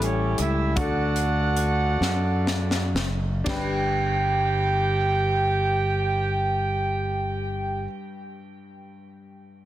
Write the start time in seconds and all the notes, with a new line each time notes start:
Already playing: A1 A2 G3 A3 C#4 E4 G4 A4
0.02 C#4 C#5, closed hi-hat
0.38 C#2 E4 E5, closed hi-hat
0.76 D2 D3 D4 F#4 A4 D5 F#5, kick, closed hi-hat
1.16 closed hi-hat
1.57 closed hi-hat
2.01 F#2, snare
2.47 snare
2.71 snare
2.95 F#1, snare
3.44 G1 G2 D4 G4 G5, kick, snare, ride bell
3.49 B4